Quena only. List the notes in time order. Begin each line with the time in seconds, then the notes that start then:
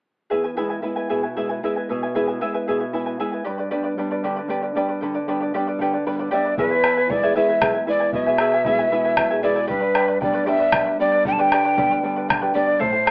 6.32 D5
6.58 B4
7.10 D5
7.36 E5
7.89 D5
8.14 E5
9.43 D5
9.69 B4
10.23 D5
10.48 E5
11.00 D5
11.27 G5
11.33 A5
11.40 G5
12.54 D5
12.81 C5